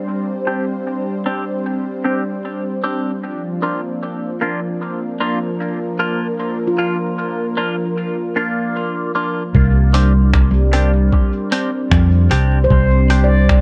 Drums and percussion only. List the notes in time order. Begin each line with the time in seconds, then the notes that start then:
9.55 kick
9.94 closed hi-hat
10.34 finger snap, kick
10.73 closed hi-hat
11.13 kick
11.52 closed hi-hat
11.91 finger snap, kick
12.31 closed hi-hat
12.70 kick
13.10 closed hi-hat
13.49 finger snap, kick